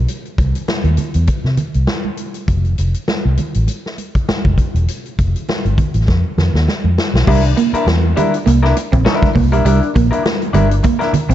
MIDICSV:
0, 0, Header, 1, 7, 480
1, 0, Start_track
1, 0, Tempo, 600601
1, 58, Time_signature, 4, 2, 24, 8
1, 4859, Tempo, 594648
1, 9109, End_track
2, 0, Start_track
2, 0, Title_t, "Clean electric guitar"
2, 0, Program_c, 0, 27
2, 5823, Note_on_c, 0, 62, 78
2, 5827, Note_on_c, 0, 64, 93
2, 5837, Note_on_c, 0, 70, 93
2, 5947, Note_off_c, 0, 70, 0
2, 5958, Note_off_c, 0, 64, 0
2, 6004, Note_off_c, 0, 62, 0
2, 6198, Note_on_c, 0, 70, 71
2, 6204, Note_on_c, 0, 64, 68
2, 6208, Note_on_c, 0, 62, 51
2, 6296, Note_off_c, 0, 62, 0
2, 6300, Note_off_c, 0, 64, 0
2, 6304, Note_off_c, 0, 70, 0
2, 6542, Note_on_c, 0, 62, 65
2, 6548, Note_on_c, 0, 64, 67
2, 6554, Note_on_c, 0, 70, 73
2, 6673, Note_off_c, 0, 70, 0
2, 6683, Note_off_c, 0, 64, 0
2, 6691, Note_off_c, 0, 62, 0
2, 6915, Note_on_c, 0, 70, 88
2, 6919, Note_on_c, 0, 64, 80
2, 6924, Note_on_c, 0, 62, 80
2, 7014, Note_off_c, 0, 62, 0
2, 7020, Note_off_c, 0, 64, 0
2, 7022, Note_off_c, 0, 70, 0
2, 7257, Note_on_c, 0, 62, 88
2, 7263, Note_on_c, 0, 64, 98
2, 7270, Note_on_c, 0, 70, 88
2, 7441, Note_off_c, 0, 62, 0
2, 7444, Note_off_c, 0, 64, 0
2, 7448, Note_off_c, 0, 70, 0
2, 7638, Note_on_c, 0, 70, 64
2, 7642, Note_on_c, 0, 64, 65
2, 7650, Note_on_c, 0, 62, 52
2, 7732, Note_off_c, 0, 62, 0
2, 7735, Note_off_c, 0, 64, 0
2, 7741, Note_on_c, 0, 62, 96
2, 7744, Note_off_c, 0, 70, 0
2, 7744, Note_on_c, 0, 64, 91
2, 7753, Note_on_c, 0, 70, 104
2, 7864, Note_off_c, 0, 70, 0
2, 7875, Note_off_c, 0, 64, 0
2, 7923, Note_off_c, 0, 62, 0
2, 8110, Note_on_c, 0, 70, 65
2, 8119, Note_on_c, 0, 64, 70
2, 8123, Note_on_c, 0, 62, 58
2, 8206, Note_off_c, 0, 62, 0
2, 8209, Note_off_c, 0, 64, 0
2, 8214, Note_off_c, 0, 70, 0
2, 8453, Note_on_c, 0, 62, 66
2, 8461, Note_on_c, 0, 64, 69
2, 8465, Note_on_c, 0, 70, 70
2, 8575, Note_off_c, 0, 70, 0
2, 8586, Note_off_c, 0, 64, 0
2, 8605, Note_off_c, 0, 62, 0
2, 8824, Note_on_c, 0, 70, 98
2, 8830, Note_on_c, 0, 64, 87
2, 8838, Note_on_c, 0, 62, 82
2, 8926, Note_off_c, 0, 62, 0
2, 8929, Note_off_c, 0, 64, 0
2, 8933, Note_off_c, 0, 70, 0
2, 9109, End_track
3, 0, Start_track
3, 0, Title_t, "Clean electric guitar"
3, 0, Program_c, 1, 27
3, 5823, Note_on_c, 1, 55, 91
3, 5924, Note_off_c, 1, 55, 0
3, 6063, Note_on_c, 1, 58, 76
3, 6165, Note_off_c, 1, 58, 0
3, 6545, Note_on_c, 1, 55, 87
3, 6646, Note_off_c, 1, 55, 0
3, 6780, Note_on_c, 1, 58, 82
3, 6883, Note_off_c, 1, 58, 0
3, 7153, Note_on_c, 1, 60, 68
3, 7235, Note_off_c, 1, 60, 0
3, 7498, Note_on_c, 1, 58, 77
3, 7601, Note_off_c, 1, 58, 0
3, 7637, Note_on_c, 1, 55, 77
3, 7717, Note_off_c, 1, 55, 0
3, 7747, Note_on_c, 1, 55, 100
3, 7846, Note_off_c, 1, 55, 0
3, 7987, Note_on_c, 1, 58, 83
3, 8086, Note_off_c, 1, 58, 0
3, 8464, Note_on_c, 1, 55, 78
3, 8564, Note_off_c, 1, 55, 0
3, 8702, Note_on_c, 1, 58, 77
3, 8803, Note_off_c, 1, 58, 0
3, 9070, Note_on_c, 1, 60, 80
3, 9109, Note_off_c, 1, 60, 0
3, 9109, End_track
4, 0, Start_track
4, 0, Title_t, "Fingered electric bass"
4, 0, Program_c, 2, 33
4, 308, Note_on_c, 2, 36, 95
4, 420, Note_off_c, 2, 36, 0
4, 670, Note_on_c, 2, 39, 87
4, 763, Note_off_c, 2, 39, 0
4, 919, Note_on_c, 2, 40, 93
4, 1008, Note_off_c, 2, 40, 0
4, 1153, Note_on_c, 2, 48, 79
4, 1246, Note_off_c, 2, 48, 0
4, 1400, Note_on_c, 2, 36, 79
4, 1489, Note_off_c, 2, 36, 0
4, 1981, Note_on_c, 2, 29, 110
4, 2189, Note_off_c, 2, 29, 0
4, 2226, Note_on_c, 2, 29, 99
4, 2340, Note_off_c, 2, 29, 0
4, 2600, Note_on_c, 2, 36, 84
4, 2690, Note_off_c, 2, 36, 0
4, 2841, Note_on_c, 2, 33, 82
4, 2931, Note_off_c, 2, 33, 0
4, 3553, Note_on_c, 2, 29, 81
4, 3646, Note_off_c, 2, 29, 0
4, 3792, Note_on_c, 2, 28, 83
4, 3885, Note_off_c, 2, 28, 0
4, 4145, Note_on_c, 2, 29, 96
4, 4259, Note_off_c, 2, 29, 0
4, 4515, Note_on_c, 2, 31, 75
4, 4606, Note_off_c, 2, 31, 0
4, 4751, Note_on_c, 2, 33, 74
4, 4843, Note_off_c, 2, 33, 0
4, 4860, Note_on_c, 2, 41, 93
4, 4976, Note_off_c, 2, 41, 0
4, 5099, Note_on_c, 2, 41, 88
4, 5216, Note_off_c, 2, 41, 0
4, 5231, Note_on_c, 2, 39, 83
4, 5324, Note_off_c, 2, 39, 0
4, 5474, Note_on_c, 2, 41, 91
4, 5566, Note_off_c, 2, 41, 0
4, 5712, Note_on_c, 2, 35, 80
4, 5805, Note_off_c, 2, 35, 0
4, 5819, Note_on_c, 2, 36, 105
4, 6028, Note_off_c, 2, 36, 0
4, 6301, Note_on_c, 2, 40, 97
4, 6509, Note_off_c, 2, 40, 0
4, 6785, Note_on_c, 2, 36, 84
4, 6992, Note_off_c, 2, 36, 0
4, 7159, Note_on_c, 2, 34, 93
4, 7250, Note_off_c, 2, 34, 0
4, 7502, Note_on_c, 2, 36, 92
4, 7643, Note_off_c, 2, 36, 0
4, 7643, Note_on_c, 2, 35, 91
4, 7731, Note_off_c, 2, 35, 0
4, 7742, Note_on_c, 2, 36, 113
4, 7858, Note_off_c, 2, 36, 0
4, 7989, Note_on_c, 2, 34, 89
4, 8102, Note_off_c, 2, 34, 0
4, 8457, Note_on_c, 2, 31, 92
4, 8665, Note_off_c, 2, 31, 0
4, 9067, Note_on_c, 2, 34, 106
4, 9109, Note_off_c, 2, 34, 0
4, 9109, End_track
5, 0, Start_track
5, 0, Title_t, "Muted clean electric guitar strokes"
5, 5957, Note_on_c, 9, 29, 59
5, 6037, Note_off_c, 9, 29, 0
5, 6055, Note_on_c, 9, 29, 41
5, 6135, Note_off_c, 9, 29, 0
5, 6199, Note_on_c, 9, 29, 51
5, 6280, Note_off_c, 9, 29, 0
5, 6306, Note_on_c, 9, 29, 41
5, 6386, Note_off_c, 9, 29, 0
5, 6682, Note_on_c, 9, 29, 58
5, 6763, Note_off_c, 9, 29, 0
5, 6788, Note_on_c, 9, 29, 36
5, 6868, Note_off_c, 9, 29, 0
5, 7024, Note_on_c, 9, 29, 34
5, 7105, Note_off_c, 9, 29, 0
5, 7161, Note_on_c, 9, 29, 62
5, 7242, Note_off_c, 9, 29, 0
5, 7259, Note_on_c, 9, 29, 48
5, 7339, Note_off_c, 9, 29, 0
5, 7512, Note_on_c, 9, 29, 46
5, 7592, Note_off_c, 9, 29, 0
5, 7874, Note_on_c, 9, 29, 48
5, 7954, Note_off_c, 9, 29, 0
5, 7981, Note_on_c, 9, 29, 39
5, 8062, Note_off_c, 9, 29, 0
5, 8117, Note_on_c, 9, 29, 53
5, 8198, Note_off_c, 9, 29, 0
5, 8216, Note_on_c, 9, 29, 41
5, 8297, Note_off_c, 9, 29, 0
5, 8584, Note_on_c, 9, 29, 40
5, 8665, Note_off_c, 9, 29, 0
5, 8696, Note_on_c, 9, 29, 41
5, 8777, Note_off_c, 9, 29, 0
5, 8936, Note_on_c, 9, 29, 47
5, 9016, Note_off_c, 9, 29, 0
5, 9066, Note_on_c, 9, 29, 55
5, 9109, Note_off_c, 9, 29, 0
5, 9109, End_track
6, 0, Start_track
6, 0, Title_t, "Muted fingered electric bass strokes"
6, 3431, Note_on_c, 9, 29, 48
6, 3511, Note_off_c, 9, 29, 0
6, 6192, Note_on_c, 9, 29, 43
6, 6273, Note_off_c, 9, 29, 0
6, 8935, Note_on_c, 9, 29, 45
6, 9016, Note_off_c, 9, 29, 0
6, 9109, End_track
7, 0, Start_track
7, 0, Title_t, "Drums"
7, 66, Note_on_c, 9, 42, 80
7, 146, Note_off_c, 9, 42, 0
7, 202, Note_on_c, 9, 42, 29
7, 282, Note_off_c, 9, 42, 0
7, 306, Note_on_c, 9, 36, 99
7, 309, Note_on_c, 9, 42, 71
7, 386, Note_off_c, 9, 36, 0
7, 388, Note_off_c, 9, 42, 0
7, 440, Note_on_c, 9, 42, 53
7, 520, Note_off_c, 9, 42, 0
7, 545, Note_on_c, 9, 38, 91
7, 545, Note_on_c, 9, 63, 64
7, 625, Note_off_c, 9, 38, 0
7, 625, Note_off_c, 9, 63, 0
7, 674, Note_on_c, 9, 42, 29
7, 754, Note_off_c, 9, 42, 0
7, 774, Note_on_c, 9, 42, 64
7, 785, Note_on_c, 9, 62, 47
7, 785, Note_on_c, 9, 64, 74
7, 854, Note_off_c, 9, 42, 0
7, 864, Note_off_c, 9, 62, 0
7, 864, Note_off_c, 9, 64, 0
7, 911, Note_on_c, 9, 42, 55
7, 991, Note_off_c, 9, 42, 0
7, 1018, Note_on_c, 9, 42, 80
7, 1018, Note_on_c, 9, 62, 52
7, 1024, Note_on_c, 9, 36, 89
7, 1098, Note_off_c, 9, 42, 0
7, 1098, Note_off_c, 9, 62, 0
7, 1104, Note_off_c, 9, 36, 0
7, 1158, Note_on_c, 9, 38, 30
7, 1238, Note_off_c, 9, 38, 0
7, 1256, Note_on_c, 9, 42, 62
7, 1258, Note_on_c, 9, 64, 83
7, 1336, Note_off_c, 9, 42, 0
7, 1338, Note_off_c, 9, 64, 0
7, 1392, Note_on_c, 9, 42, 42
7, 1472, Note_off_c, 9, 42, 0
7, 1497, Note_on_c, 9, 38, 90
7, 1505, Note_on_c, 9, 63, 69
7, 1577, Note_off_c, 9, 38, 0
7, 1585, Note_off_c, 9, 63, 0
7, 1636, Note_on_c, 9, 63, 75
7, 1716, Note_off_c, 9, 63, 0
7, 1736, Note_on_c, 9, 42, 66
7, 1816, Note_off_c, 9, 42, 0
7, 1871, Note_on_c, 9, 42, 52
7, 1950, Note_off_c, 9, 42, 0
7, 1980, Note_on_c, 9, 42, 83
7, 1982, Note_on_c, 9, 36, 100
7, 2060, Note_off_c, 9, 42, 0
7, 2062, Note_off_c, 9, 36, 0
7, 2114, Note_on_c, 9, 42, 29
7, 2194, Note_off_c, 9, 42, 0
7, 2221, Note_on_c, 9, 42, 83
7, 2301, Note_off_c, 9, 42, 0
7, 2352, Note_on_c, 9, 42, 49
7, 2432, Note_off_c, 9, 42, 0
7, 2460, Note_on_c, 9, 38, 86
7, 2468, Note_on_c, 9, 63, 72
7, 2540, Note_off_c, 9, 38, 0
7, 2547, Note_off_c, 9, 63, 0
7, 2696, Note_on_c, 9, 42, 74
7, 2707, Note_on_c, 9, 62, 49
7, 2707, Note_on_c, 9, 64, 68
7, 2776, Note_off_c, 9, 42, 0
7, 2787, Note_off_c, 9, 62, 0
7, 2787, Note_off_c, 9, 64, 0
7, 2832, Note_on_c, 9, 42, 50
7, 2912, Note_off_c, 9, 42, 0
7, 2936, Note_on_c, 9, 62, 51
7, 2939, Note_on_c, 9, 42, 83
7, 3016, Note_off_c, 9, 62, 0
7, 3019, Note_off_c, 9, 42, 0
7, 3085, Note_on_c, 9, 38, 33
7, 3165, Note_off_c, 9, 38, 0
7, 3180, Note_on_c, 9, 42, 57
7, 3183, Note_on_c, 9, 62, 39
7, 3260, Note_off_c, 9, 42, 0
7, 3263, Note_off_c, 9, 62, 0
7, 3317, Note_on_c, 9, 36, 77
7, 3320, Note_on_c, 9, 42, 45
7, 3397, Note_off_c, 9, 36, 0
7, 3400, Note_off_c, 9, 42, 0
7, 3425, Note_on_c, 9, 38, 99
7, 3425, Note_on_c, 9, 63, 73
7, 3505, Note_off_c, 9, 38, 0
7, 3505, Note_off_c, 9, 63, 0
7, 3555, Note_on_c, 9, 36, 88
7, 3557, Note_on_c, 9, 63, 79
7, 3635, Note_off_c, 9, 36, 0
7, 3637, Note_off_c, 9, 63, 0
7, 3658, Note_on_c, 9, 36, 78
7, 3660, Note_on_c, 9, 42, 68
7, 3738, Note_off_c, 9, 36, 0
7, 3740, Note_off_c, 9, 42, 0
7, 3800, Note_on_c, 9, 42, 46
7, 3880, Note_off_c, 9, 42, 0
7, 3903, Note_on_c, 9, 42, 93
7, 3983, Note_off_c, 9, 42, 0
7, 4040, Note_on_c, 9, 42, 30
7, 4120, Note_off_c, 9, 42, 0
7, 4144, Note_on_c, 9, 42, 84
7, 4146, Note_on_c, 9, 36, 98
7, 4224, Note_off_c, 9, 42, 0
7, 4226, Note_off_c, 9, 36, 0
7, 4280, Note_on_c, 9, 42, 48
7, 4360, Note_off_c, 9, 42, 0
7, 4385, Note_on_c, 9, 63, 67
7, 4389, Note_on_c, 9, 38, 90
7, 4465, Note_off_c, 9, 63, 0
7, 4469, Note_off_c, 9, 38, 0
7, 4519, Note_on_c, 9, 42, 32
7, 4598, Note_off_c, 9, 42, 0
7, 4618, Note_on_c, 9, 36, 86
7, 4618, Note_on_c, 9, 42, 69
7, 4628, Note_on_c, 9, 62, 48
7, 4628, Note_on_c, 9, 64, 76
7, 4698, Note_off_c, 9, 36, 0
7, 4698, Note_off_c, 9, 42, 0
7, 4708, Note_off_c, 9, 62, 0
7, 4708, Note_off_c, 9, 64, 0
7, 4747, Note_on_c, 9, 42, 50
7, 4827, Note_off_c, 9, 42, 0
7, 4858, Note_on_c, 9, 62, 50
7, 4861, Note_on_c, 9, 36, 91
7, 4864, Note_on_c, 9, 38, 48
7, 4939, Note_off_c, 9, 62, 0
7, 4941, Note_off_c, 9, 36, 0
7, 4945, Note_off_c, 9, 38, 0
7, 5103, Note_on_c, 9, 38, 61
7, 5103, Note_on_c, 9, 62, 41
7, 5103, Note_on_c, 9, 64, 84
7, 5183, Note_off_c, 9, 38, 0
7, 5183, Note_off_c, 9, 62, 0
7, 5183, Note_off_c, 9, 64, 0
7, 5239, Note_on_c, 9, 38, 53
7, 5320, Note_off_c, 9, 38, 0
7, 5345, Note_on_c, 9, 38, 62
7, 5346, Note_on_c, 9, 63, 70
7, 5426, Note_off_c, 9, 38, 0
7, 5427, Note_off_c, 9, 63, 0
7, 5478, Note_on_c, 9, 63, 82
7, 5559, Note_off_c, 9, 63, 0
7, 5587, Note_on_c, 9, 38, 87
7, 5668, Note_off_c, 9, 38, 0
7, 5726, Note_on_c, 9, 38, 85
7, 5806, Note_off_c, 9, 38, 0
7, 5821, Note_on_c, 9, 49, 108
7, 5823, Note_on_c, 9, 36, 112
7, 5902, Note_off_c, 9, 49, 0
7, 5904, Note_off_c, 9, 36, 0
7, 5963, Note_on_c, 9, 42, 34
7, 6044, Note_off_c, 9, 42, 0
7, 6065, Note_on_c, 9, 42, 95
7, 6145, Note_off_c, 9, 42, 0
7, 6202, Note_on_c, 9, 42, 58
7, 6282, Note_off_c, 9, 42, 0
7, 6309, Note_on_c, 9, 38, 106
7, 6316, Note_on_c, 9, 63, 76
7, 6390, Note_off_c, 9, 38, 0
7, 6397, Note_off_c, 9, 63, 0
7, 6546, Note_on_c, 9, 42, 81
7, 6552, Note_on_c, 9, 62, 62
7, 6552, Note_on_c, 9, 64, 79
7, 6627, Note_off_c, 9, 42, 0
7, 6633, Note_off_c, 9, 62, 0
7, 6633, Note_off_c, 9, 64, 0
7, 6681, Note_on_c, 9, 42, 61
7, 6762, Note_off_c, 9, 42, 0
7, 6787, Note_on_c, 9, 62, 53
7, 6790, Note_on_c, 9, 42, 93
7, 6868, Note_off_c, 9, 62, 0
7, 6871, Note_off_c, 9, 42, 0
7, 6929, Note_on_c, 9, 38, 37
7, 7010, Note_off_c, 9, 38, 0
7, 7027, Note_on_c, 9, 42, 80
7, 7030, Note_on_c, 9, 62, 46
7, 7107, Note_off_c, 9, 42, 0
7, 7111, Note_off_c, 9, 62, 0
7, 7161, Note_on_c, 9, 36, 96
7, 7162, Note_on_c, 9, 42, 54
7, 7241, Note_off_c, 9, 36, 0
7, 7243, Note_off_c, 9, 42, 0
7, 7263, Note_on_c, 9, 38, 102
7, 7272, Note_on_c, 9, 63, 87
7, 7344, Note_off_c, 9, 38, 0
7, 7353, Note_off_c, 9, 63, 0
7, 7398, Note_on_c, 9, 36, 107
7, 7401, Note_on_c, 9, 42, 35
7, 7404, Note_on_c, 9, 63, 93
7, 7410, Note_on_c, 9, 38, 40
7, 7479, Note_off_c, 9, 36, 0
7, 7481, Note_off_c, 9, 42, 0
7, 7485, Note_off_c, 9, 63, 0
7, 7491, Note_off_c, 9, 38, 0
7, 7503, Note_on_c, 9, 36, 86
7, 7510, Note_on_c, 9, 46, 71
7, 7584, Note_off_c, 9, 36, 0
7, 7591, Note_off_c, 9, 46, 0
7, 7644, Note_on_c, 9, 42, 54
7, 7725, Note_off_c, 9, 42, 0
7, 7746, Note_on_c, 9, 42, 101
7, 7827, Note_off_c, 9, 42, 0
7, 7883, Note_on_c, 9, 42, 33
7, 7963, Note_off_c, 9, 42, 0
7, 7989, Note_on_c, 9, 42, 88
7, 7990, Note_on_c, 9, 36, 98
7, 8070, Note_off_c, 9, 42, 0
7, 8071, Note_off_c, 9, 36, 0
7, 8125, Note_on_c, 9, 42, 55
7, 8205, Note_off_c, 9, 42, 0
7, 8231, Note_on_c, 9, 38, 110
7, 8231, Note_on_c, 9, 63, 74
7, 8311, Note_off_c, 9, 38, 0
7, 8311, Note_off_c, 9, 63, 0
7, 8360, Note_on_c, 9, 42, 39
7, 8441, Note_off_c, 9, 42, 0
7, 8460, Note_on_c, 9, 42, 78
7, 8468, Note_on_c, 9, 62, 61
7, 8468, Note_on_c, 9, 64, 80
7, 8541, Note_off_c, 9, 42, 0
7, 8549, Note_off_c, 9, 62, 0
7, 8549, Note_off_c, 9, 64, 0
7, 8598, Note_on_c, 9, 42, 58
7, 8678, Note_off_c, 9, 42, 0
7, 8698, Note_on_c, 9, 42, 103
7, 8698, Note_on_c, 9, 62, 55
7, 8706, Note_on_c, 9, 36, 100
7, 8778, Note_off_c, 9, 62, 0
7, 8779, Note_off_c, 9, 42, 0
7, 8787, Note_off_c, 9, 36, 0
7, 8838, Note_on_c, 9, 42, 39
7, 8846, Note_on_c, 9, 38, 34
7, 8918, Note_off_c, 9, 42, 0
7, 8927, Note_off_c, 9, 38, 0
7, 8940, Note_on_c, 9, 42, 82
7, 8944, Note_on_c, 9, 62, 43
7, 8944, Note_on_c, 9, 64, 103
7, 9021, Note_off_c, 9, 42, 0
7, 9025, Note_off_c, 9, 62, 0
7, 9025, Note_off_c, 9, 64, 0
7, 9076, Note_on_c, 9, 42, 50
7, 9109, Note_off_c, 9, 42, 0
7, 9109, End_track
0, 0, End_of_file